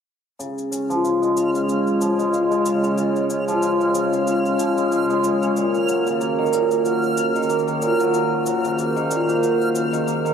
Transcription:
0.39 C#3 G#3 F4 C#5 F6, shaker
0.58 shaker
0.71 C#4, shaker
0.90 F3, shaker
1.04 F4, shaker
1.22 G#3, shaker
1.36 C#3, shaker
1.54 F4, shaker
1.68 C#4, shaker
1.87 shaker
2.01 F3, shaker
2.18 G#3, shaker
2.33 F4, shaker
2.51 G#3, shaker
2.65 C#3, shaker
2.83 C#4, shaker
2.97 C#3, shaker
3.16 shaker
3.30 C#4, shaker
3.48 F3, shaker
3.62 F4, shaker
3.80 G#3, shaker
3.95 C#3, shaker
4.13 F4, shaker
4.27 C#4, shaker
4.46 shaker
4.59 F3, shaker
4.77 G#3, shaker
4.92 F4, shaker
5.10 G#3, shaker
5.24 C#3, shaker
5.42 C#4, shaker
5.55 A#2 D#3 A#3 F#4, shaker
5.74 shaker
5.89 F#3, shaker
6.07 C#3, shaker
6.20 A#3, shaker
6.39 D#3
6.46 shaker
6.53 A#2, shaker
6.71 A#3, shaker
6.85 F#3, shaker
7.03 shaker
7.17 C#3, shaker
7.35 D#3, shaker
7.43 shaker
7.49 A#3, shaker
7.59 shaker
7.67 D#3, shaker
7.82 A#2, shaker
8.00 F#3, shaker
8.14 A#2 C5, shaker
8.46 F#3, shaker
8.64 C#3, shaker
8.78 A#3, shaker
8.96 D#3, shaker
9.11 A#2, shaker
9.29 A#3, shaker
9.43 F#3, shaker
9.61 shaker
9.75 C#3, shaker
9.93 D#3, shaker
10.07 A#3, shaker
10.25 D#3, shaker

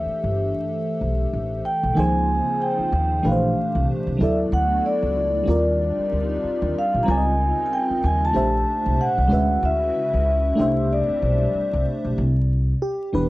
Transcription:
Already playing: E3 A3 D4 G4 A4 E5
0.06 muted upright bass stroke
0.24 G1
1.01 B1
1.33 A1
1.65 G5
1.83 B1
1.93 C#3 D#3 A#3 C4 D#4 F4
1.97 C#2 F3 G#4 C5 G#5
2.62 G5
2.79 muted upright bass stroke
2.93 D#2
3.23 A#1 A#2 E3 A3 D4 G4 B4
3.27 F5
3.32 C5
3.75 C2
4.07 C2
4.17 D2 F#3 A3 B3 D4 E4 F#4
4.21 A4 D5 E5
4.52 D2 F#5
4.86 D5
5.03 C#2
5.43 G3 C4 D4 D#4 F4 G4
5.47 D#2 A#4 D5
5.98 muted upright bass stroke
6.12 D2
6.44 muted upright bass stroke
6.62 D#2
6.78 F5
6.94 A#1
7.03 G3 C4 A#5
7.08 C#2 C#3 C4 D#4 F4 A#4 D5 G#5
7.17 D#5
7.66 G#5
7.73 G5
7.90 muted upright bass stroke
8.04 D#2 G#5
8.25 A5
8.33 A#1 A#2 A3 D4 G4 C5 E5
8.86 C2
9.01 F#5
9.18 C2
9.27 D2 C#3 G#3 C#4 E4 F#4
9.32 B4 E5
9.63 D2 E5
10.14 C#2
10.55 G3 A3 C4 D4 G4
10.59 C2 C5 E5
10.93 D5
11.10 muted upright bass stroke
11.22 B1
11.55 muted upright bass stroke
11.73 C2
12.05 B1
12.18 C2
12.82 G4
13.13 E1 E3 B3 D4 B4

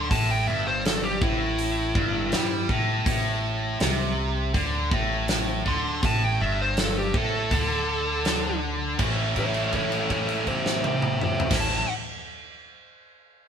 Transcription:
Already playing: D3 C6
0.11 A1 A2 A5, kick, open hi-hat
0.31 G5
0.47 G1 G2 E5
0.67 C5
0.86 A4, snare, open hi-hat
1.03 G4
1.21 A1 A2 E4, kick
1.59 open hi-hat
1.95 G1 G2, kick
2.32 G2 G3, snare, open hi-hat
2.69 A1 A2, kick
3.06 A1 A2, kick, open hi-hat
3.80 C2 C3, snare, open hi-hat
4.54 D2 D3, kick, open hi-hat
4.91 A1 A2, kick
5.28 snare, open hi-hat
5.65 D2 D3 C6, kick
6.03 A1 A2 A5, kick, open hi-hat
6.24 G5
6.40 G1 G2 E5
6.62 C5
6.77 A4, snare, open hi-hat
6.98 G4
7.14 A1 A2 A4, kick
7.51 D2 D3, kick, open hi-hat
8.25 snare, open hi-hat
8.98 A1 A2 E3 A3 C#4, kick, crash
9.02 E4
9.36 A4 C#5, kick, crash
9.54 crash
9.73 A4 C#5, kick, crash
9.92 crash
10.10 A4 C#5, kick, crash
10.29 crash
10.47 C5 E5, kick, crash
10.66 snare
10.84 C5 E5, high tom
11.02 mid tom
11.21 C5 E5, mid tom
11.40 floor tom
11.49 A1 A2 E3 A3 C#4, kick, snare, crash
11.54 E4
11.60 A5

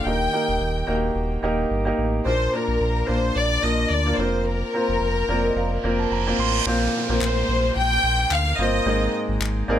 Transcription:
0.04 D#1 D#3 A#3 D#4 G4 A#4 G5
0.33 A#3 D#4 G4 A#4
0.48 D#1
0.60 D#1
0.87 D#1 A#3 D#4 F#4 A#4
0.95 G4
1.15 D#1
1.42 D#1 A#3 D#4 G4 A#4
1.70 G1
1.85 A#3 D#4 G4 A#4
1.98 A1
2.25 A#1 A#2 A#3 D4 F4 A#4 C5
2.53 A#3 D4 F4 A#4
2.68 A#1
2.80 A#1
3.07 A#1 A#3 D4 F4 A#4 C5
3.35 A#1 D5
3.62 A#1 A#3 D4 F4 A#4 D#5
3.90 D2 D5
4.06 A#3 D4 F4 A#4
4.18 F1 A#3 C4 F4 A#4 C5
4.46 A#4
4.74 A#3 C4 F4 C5
4.89 F1
5.01 F1
5.28 F1 A#3 C4 F4 A#4 D5
5.45 D#5
5.55 F1 F5, reverse cymbal
5.83 F1 A#3 C4 F4 A#4
5.99 A5
6.11 F1 A#5
6.27 A#3 C4 F4 A#4
6.38 A1 C6
6.66 A#1 A#2 A#3 C4 F4 A#4 C5, downlifter
7.09 A#1 A#3 C4 F4 A#4 C5
7.21 A#1 C5, clap
7.48 A#1
7.76 A#1 G5
8.03 A#1
8.30 D2 F5, clap
8.58 G1 A#3 C4 F4 A#4 C5 D#5
8.85 G#1 G#2 A#3 C4 D#4 G#4 A#4
9.28 G#1
9.40 G#1, clap
9.68 G#1 A#3 C4 D#4 G#4 A#4 D5

